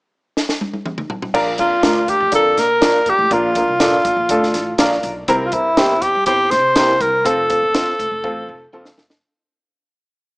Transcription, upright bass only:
1.34 A#1
1.59 F2
1.83 D2
2.20 F2
2.33 F2
2.57 A#2
3.06 A#1
3.19 A1
3.31 A#1
3.68 C2
4.05 A#1
4.17 A#1
4.30 D2
4.54 A1
4.79 A#1
5.04 B1
5.28 C2
5.53 G2
5.78 E2
6.15 G2
6.27 G1
6.52 C3
7.01 C2
7.25 F1
7.62 G1
7.99 F1
8.11 F1
8.24 A1
8.49 F1
8.73 D#1
8.97 E1

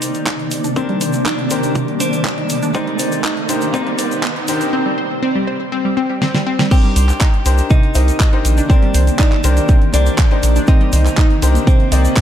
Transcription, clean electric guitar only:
Already playing: D#4
0.76 D4
1.26 D4
2.00 D4
2.75 D#4
3.74 D#4
6.71 G4
7.70 D#4
8.70 D4
9.19 D4
9.94 D4
10.68 D#4
11.67 C4

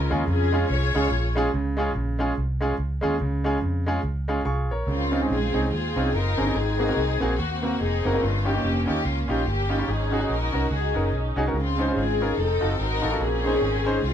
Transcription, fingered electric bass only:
0.11 D#2
0.28 F2
0.70 C2
0.95 C#2
1.11 A#1
1.54 C#2
1.95 A#1
2.38 C2
2.78 C#2
3.04 D#2
3.21 C#2
3.62 F2
4.03 C#2
4.45 C2
4.70 A#1
4.87 C#2
5.30 A#1
5.54 C2
5.71 D#2
5.96 C2
6.13 F#1
6.38 G1
6.55 G#1
6.97 C2
7.21 A#1
7.38 D#2
7.81 F1
8.05 F#1
8.22 G1
8.63 F1
8.89 D#2
9.05 C#2
9.29 A#1
9.46 G1
9.88 G#1
10.29 A#1
10.54 C2
10.71 C#2
10.95 F#1
11.12 B1
11.36 C2
11.53 C#2
11.96 G#1
12.37 F1
12.62 F#1
12.79 G#1
13.03 A1
13.20 A#1
13.62 G#1
14.03 C2

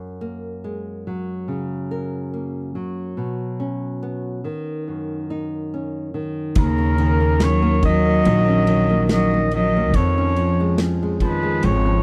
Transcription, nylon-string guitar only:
Already playing: F#2 G#3 C#4
0.21 A#3
0.64 G#3
1.07 F#3
1.48 C#3
1.91 A#4
2.34 A#3
2.75 F#3
3.17 B2
3.60 C#4
4.03 B3
4.44 D#3
4.88 F#2
5.30 D#4
5.74 C#4
6.14 D#3
6.57 D#2
6.78 C#4
6.99 D#3
7.21 A#3
7.43 C#4
7.62 A#3
7.83 D#3
8.05 A#3
8.25 D#2
8.48 C#4
8.68 D#3
8.90 A#3
9.12 C#4
9.34 A#3
9.54 D#3
9.77 A#3
9.96 F2
10.18 C#4
10.38 F3
10.60 G#3
10.81 C#4
11.03 G#3
11.22 F3
11.43 G#3
11.63 F2
11.86 C#4

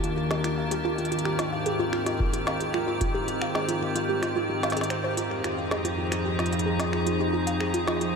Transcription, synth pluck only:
0.04 F4
0.17 F4
0.31 G4
0.44 F4
0.58 F5
0.71 G4
0.85 F4
0.98 F4
1.12 F4
1.25 G4
1.39 F4
1.53 F5
1.66 G#4
1.80 F4
1.93 F4
2.06 F4
2.20 G4
2.33 F4
2.47 F5
2.61 G#4
2.74 F4
2.88 F4
3.01 F4
3.15 G4
3.28 F4
3.42 F5
3.55 G#4
3.69 F4
3.82 F4
3.96 F4
4.09 G4
4.23 F4
4.36 F4
4.50 F4
4.63 F5
4.77 G#4
4.90 C5
5.04 C5
5.17 F4
5.31 G4
5.44 F4
5.58 F5
5.71 G#4
5.85 F4
5.98 F4
6.12 F4
6.25 G4
6.39 F4
6.53 F5
6.66 G#4
6.79 F4
6.93 F4
7.06 F4
7.20 G4
7.33 F4
7.47 F5
7.60 G#4
7.74 F4
7.88 F4
8.01 F4

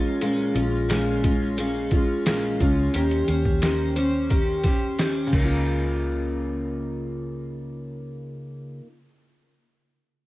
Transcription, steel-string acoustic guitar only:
Already playing: G#3 C#4 F4
0.21 A#2 G#3 C#4 F4
0.55 G#3 C#4 F4
0.89 A#2 G#3 C#4 F4
1.23 G#3 C#4 F4
1.57 A#2 G#3 C#4 F4
1.92 G#3 C#4 F4
2.26 A#2 G#3 C#4 F4
2.60 G#3 C#4 F4
2.94 D#3 C#4 G4 C5
3.28 C#4 G4 C5
3.62 D#3 C#4 G4 C5
3.96 C#4 G4 C5
4.29 D#3 C#4 G4 C5
4.64 C#4 G4 C5
4.98 D#3 C#4 G4 C5
5.27 C#3
5.33 A#3
5.39 D#4
5.44 F4

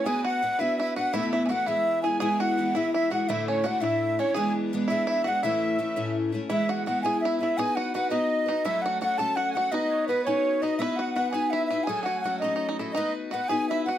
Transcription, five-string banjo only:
0.06 G#4
0.25 F#4
0.59 E4
0.80 E4
0.96 F#4
1.14 E4
1.33 E4
1.46 F#4 G#4
1.66 E4
2.04 G#4
2.20 G#4
2.40 F#4
2.75 E4
2.94 E4
3.11 F#4
3.30 E4
3.48 C#4
3.64 F#4
3.84 E4
4.19 C#4
4.34 G#4
4.88 E4
5.07 E4
5.24 F#4
5.43 E4
6.50 E4
6.69 F#4
6.87 F#4
7.06 G#4
7.25 E4
7.43 E4
7.59 G#4
7.77 F#4
7.95 F#4
8.11 D#4
8.48 D#4
8.65 E4
8.86 F#4
9.02 F#4
9.19 A4
9.37 F#4
9.57 F#4
9.74 D#4
10.09 B3
10.27 C#4
10.63 D#4
10.82 E4
10.99 F#4
11.16 F#4
11.33 G#4
11.53 E4
11.70 E4
11.87 G#4
12.03 F#4 G#4
12.26 F#4
12.42 D#4
12.56 D#4
12.69 D#4
12.79 E4
12.95 D#4
13.31 F#4
13.49 G#4
13.71 E4
13.89 F#4

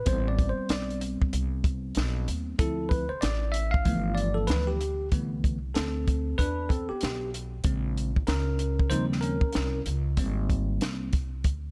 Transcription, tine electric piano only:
0.06 G3 B3 C4 C5
0.28 D5
0.49 C5
0.70 D5
2.59 F3 C4 E4 A4
2.89 B4
3.09 C5
3.21 D5
3.52 E5
3.71 F5
3.85 E3 F3 A3 B3
4.15 D5
4.34 A4
4.47 B4
4.67 G4
5.12 D3 E3 A3 B3
5.75 C4 A4
6.38 D4 B4
6.69 C4 A4
6.89 B3 G4
7.64 C#3 G#3 C4
8.27 C#4 A#4
8.90 C#3 F3 G3 C4 D#4 C5
9.21 C#4 A#4
10.17 G3 A#3 C4

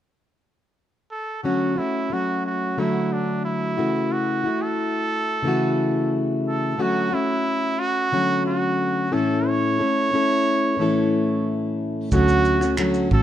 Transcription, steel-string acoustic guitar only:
1.44 D3 F#3 A3 C#4 F#4
1.76 A3 C#4 F#4
2.10 F#3 A3 C#4 F#4
2.77 D3 F#3 A3 F#4
3.78 C#3 E3 A3 E4 F#4
4.44 A3 E4 F#4
5.43 C#3 E3 A3 E4
5.48 F#4
6.77 D3 F#3 A3 C#4 F#4
7.11 A3 C#4 F#4
8.12 D3 F#3 A3 C#4 F#4
9.12 A2 E3 A3 C#4 E4 A4
9.79 A3 C#4 E4 A4
10.12 A3 C#4 E4 A4
10.77 A2 E3 A3 C#4
10.81 E4 A4
12.12 D3 F#3 A3 C#4 F#4
12.61 A3 C#4 F#4
12.78 D3 F#3 A3 C#4 F#4
13.11 F#3 A3 C#4 F#4

